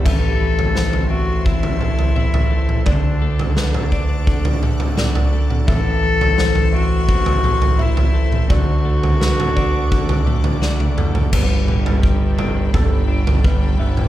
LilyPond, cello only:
\new Staff \with { instrumentName = "Cello" } { \time 4/4 \key g \major \tempo 4 = 85 a'4. fis'8 e'2 | d'4 d'2 r4 | a'4. fis'4. e'4 | fis'2. r4 |
r1 | }